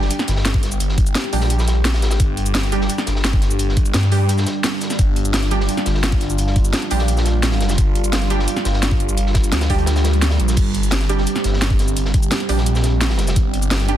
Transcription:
Already playing: G3 D4 G4
0.02 snare
0.11 closed hi-hat, shaker
0.19 snare, shaker
0.28 G1, snare, closed hi-hat, shaker
0.36 snare
0.45 snare, closed hi-hat, shaker
0.54 kick
0.63 snare, closed hi-hat
0.72 shaker
0.80 G1, closed hi-hat, shaker
0.89 snare
0.98 kick, closed hi-hat
1.06 closed hi-hat, shaker
1.15 snare, closed hi-hat, shaker
1.24 snare, closed hi-hat
1.33 A#1 G3 D4 G4, closed hi-hat, open hi-hat
1.41 snare
1.50 closed hi-hat, shaker
1.59 snare, shaker
1.68 snare, closed hi-hat, shaker
1.85 snare, closed hi-hat, shaker
1.93 A1, snare, closed hi-hat
2.02 snare, closed hi-hat
2.11 snare, closed hi-hat, shaker
2.20 G1, kick, closed hi-hat, shaker
2.37 closed hi-hat
2.46 closed hi-hat, shaker
2.55 G1, snare, closed hi-hat, shaker
2.63 snare, closed hi-hat
2.72 G3 D4 G4, closed hi-hat
2.81 snare
2.90 closed hi-hat, shaker
2.98 snare, shaker
3.06 G1, snare, closed hi-hat, shaker
3.16 snare
3.24 snare, closed hi-hat, shaker
3.33 kick
3.42 snare, closed hi-hat
3.51 shaker
3.59 G1, closed hi-hat, shaker
3.69 snare
3.77 kick, closed hi-hat
3.85 closed hi-hat, shaker
3.94 G2, snare, closed hi-hat, shaker
4.03 snare, closed hi-hat
4.12 G3 D4 G4, closed hi-hat, open hi-hat
4.29 closed hi-hat, shaker
4.38 snare, shaker
4.46 snare, closed hi-hat, shaker
4.64 snare, closed hi-hat, shaker
4.81 snare, closed hi-hat, shaker
4.90 snare, shaker
4.99 G1 F4, kick, closed hi-hat, shaker
5.16 closed hi-hat
5.25 closed hi-hat, shaker
5.34 G1, snare, closed hi-hat, shaker
5.43 snare, closed hi-hat
5.51 G3 D4 G4, closed hi-hat
5.60 snare
5.69 closed hi-hat, shaker
5.77 snare, shaker
5.86 G1, snare, closed hi-hat, shaker
5.94 snare
6.03 snare, closed hi-hat, shaker
6.12 kick
6.20 snare, closed hi-hat
6.30 shaker
6.38 G1, closed hi-hat, shaker
6.47 snare
6.56 kick, closed hi-hat
6.65 closed hi-hat, shaker
6.73 snare, closed hi-hat, shaker
6.82 snare, closed hi-hat
6.90 A#1 G3 D4 G4, closed hi-hat, open hi-hat
6.99 snare
7.08 closed hi-hat, shaker
7.17 snare, shaker
7.25 snare, closed hi-hat, shaker
7.43 snare, closed hi-hat, shaker
7.52 snare, closed hi-hat
7.61 snare, closed hi-hat
7.69 snare, closed hi-hat, shaker
7.78 G1, kick, closed hi-hat, shaker
7.95 closed hi-hat
8.04 closed hi-hat, shaker
8.13 G1, snare, closed hi-hat, shaker
8.22 snare, closed hi-hat
8.30 G3 D4 G4, closed hi-hat
8.39 snare
8.48 closed hi-hat, shaker
8.57 snare, shaker
8.65 G1, snare, closed hi-hat, shaker
8.74 snare
8.83 snare, closed hi-hat, shaker
8.91 kick
9.00 closed hi-hat
9.09 shaker
9.17 G1, closed hi-hat, shaker
9.26 snare
9.34 kick, snare, closed hi-hat
9.44 closed hi-hat, shaker
9.52 D2, snare, closed hi-hat, shaker
9.61 snare, closed hi-hat, shaker
9.70 G3 D4 G4, kick, open hi-hat
9.78 closed hi-hat
9.86 snare, closed hi-hat, swell, shaker
9.96 snare, closed hi-hat, shaker
10.04 snare, closed hi-hat, shaker
10.13 closed hi-hat
10.22 snare, closed hi-hat, shaker
10.30 snare, closed hi-hat
10.40 A#1, closed hi-hat
10.48 snare, closed hi-hat, shaker
10.57 G1 C4 G4, kick, closed hi-hat, crash, shaker
10.74 closed hi-hat
10.83 closed hi-hat, shaker
10.91 G1, snare, closed hi-hat, shaker
11.01 snare, closed hi-hat
11.09 G3 D4 G4, closed hi-hat
11.18 snare
11.27 closed hi-hat, shaker
11.36 snare, shaker
11.44 G1, snare, closed hi-hat, shaker
11.53 snare
11.61 snare, closed hi-hat, shaker
11.70 kick
11.79 snare, closed hi-hat
11.88 shaker
11.97 G1, closed hi-hat, shaker
12.05 snare
12.14 kick, closed hi-hat
12.23 closed hi-hat, shaker
12.31 snare, closed hi-hat, shaker
12.40 snare, closed hi-hat
12.49 A#1 G3 D4 G4, closed hi-hat, open hi-hat
12.58 snare
12.66 closed hi-hat, shaker
12.75 snare, shaker
12.83 snare, closed hi-hat, shaker
13.01 snare, closed hi-hat, shaker
13.10 snare, closed hi-hat
13.18 snare, closed hi-hat
13.27 snare, closed hi-hat, shaker
13.36 G1, kick, closed hi-hat, shaker
13.54 closed hi-hat
13.62 closed hi-hat, shaker
13.71 G1, snare, closed hi-hat, shaker
13.80 snare, closed hi-hat
13.88 G3 D4 G4, closed hi-hat

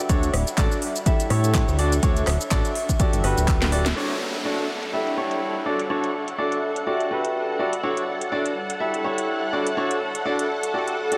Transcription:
0.09 D2 D4 F#4 A4 C#5, kick, closed hi-hat, shaker
0.22 E5, closed hi-hat, shaker
0.28 A4
0.34 D1, cross-stick, open hi-hat
0.47 closed hi-hat, shaker
0.58 A1 D4 F#4 A4 D5, kick, clap, closed hi-hat, shaker
0.72 shaker
0.82 open hi-hat
0.96 closed hi-hat, shaker
1.06 E4 G4 A4 E5, kick, closed hi-hat, shaker
1.20 closed hi-hat, shaker
1.30 A2 E4 G4 A4 C#5, cross-stick, open hi-hat
1.44 closed hi-hat, shaker
1.54 kick, clap, closed hi-hat, shaker
1.68 D2, shaker
1.79 D4 F#4 A4 D5, open hi-hat
1.92 closed hi-hat, shaker
2.03 D2 D4 F#4 A4 C#5, kick, closed hi-hat, shaker
2.17 closed hi-hat, shaker
2.27 D1, cross-stick, clap, open hi-hat
2.41 closed hi-hat, shaker
2.51 A1 D4 F#4 A4 D5, kick, clap, closed hi-hat, shaker
2.65 closed hi-hat, shaker
2.75 open hi-hat
2.89 kick, closed hi-hat, shaker
3.00 F#4 G4 A4 D5, kick, closed hi-hat, shaker
3.13 G1, closed hi-hat, shaker
3.24 G1 F#4 G4 A4 B4, cross-stick, open hi-hat
3.37 D1, closed hi-hat, shaker
3.48 kick, clap, closed hi-hat, shaker
3.62 snare, closed hi-hat, shaker
3.72 F#4 G4 A4 D5, open hi-hat
3.86 snare, closed hi-hat, shaker
3.96 D4 F#4 A4 C#5 F#5, downlifter
4.07 A4, closed hi-hat
4.17 E5
4.34 closed hi-hat
4.45 D4 F#4 A4 D5
4.59 closed hi-hat
4.83 closed hi-hat
4.93 E4 G4 A4 E5
5.07 closed hi-hat
5.17 E4 G4 A4 C#5
5.31 closed hi-hat
5.66 D4 F#4 A4 D5
5.79 closed hi-hat
5.89 D4 F#4 A4 C#5 F#5
6.04 closed hi-hat
6.28 closed hi-hat
6.38 D4 F#4 A4 D5
6.52 closed hi-hat
6.76 closed hi-hat
6.87 F#4 G4 A4 D5
7.00 closed hi-hat
7.11 F#4 G4 A4 B4
7.25 closed hi-hat
7.59 F#4 G4 A4 D5
7.73 closed hi-hat
7.83 D4 F#4 A4 C#5
7.97 closed hi-hat
8.02 A4
8.12 E5
8.21 closed hi-hat
8.32 D4 F#4 A4 D5
8.46 closed hi-hat
8.70 closed hi-hat
8.80 E4 G4 A4 E5
8.94 closed hi-hat
9.04 E4 G4 A4 C#5
9.18 closed hi-hat
9.53 D4 F#4 A4 D5
9.67 closed hi-hat
9.77 D4 F#4 A4 C#5
9.91 closed hi-hat
10.15 closed hi-hat
10.25 D4 F#4 A4 D5
10.39 closed hi-hat
10.63 closed hi-hat
10.74 F#4 G4 A4 D5
10.88 closed hi-hat
11.12 F#4 G4 A4 D5, closed hi-hat

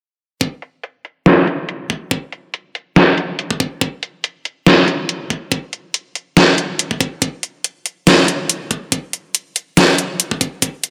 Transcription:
0.41 kick, closed hi-hat
0.62 closed hi-hat
0.83 closed hi-hat
1.05 closed hi-hat
1.26 snare, closed hi-hat
1.47 closed hi-hat
1.69 closed hi-hat
1.90 kick, closed hi-hat
2.11 kick, closed hi-hat
2.32 closed hi-hat
2.54 closed hi-hat
2.75 closed hi-hat
2.96 snare, closed hi-hat
3.18 closed hi-hat
3.39 closed hi-hat
3.51 kick
3.60 kick, closed hi-hat
3.81 kick, closed hi-hat
4.03 closed hi-hat
4.24 closed hi-hat
4.45 closed hi-hat
4.67 snare, closed hi-hat
4.88 closed hi-hat
5.09 closed hi-hat
5.30 kick, closed hi-hat
5.52 kick, closed hi-hat
5.73 closed hi-hat
5.94 closed hi-hat
6.15 closed hi-hat
6.37 snare, closed hi-hat
6.58 closed hi-hat
6.79 closed hi-hat
6.91 kick
7.01 kick, closed hi-hat
7.22 kick, closed hi-hat
7.43 closed hi-hat
7.64 closed hi-hat
7.86 closed hi-hat
8.07 snare, closed hi-hat
8.28 closed hi-hat
8.50 closed hi-hat
8.71 kick, closed hi-hat
8.92 kick, closed hi-hat
9.13 closed hi-hat
9.35 closed hi-hat
9.56 closed hi-hat
9.77 snare, closed hi-hat
9.98 closed hi-hat
10.20 closed hi-hat
10.31 kick
10.41 kick, closed hi-hat
10.62 kick, closed hi-hat
10.84 closed hi-hat

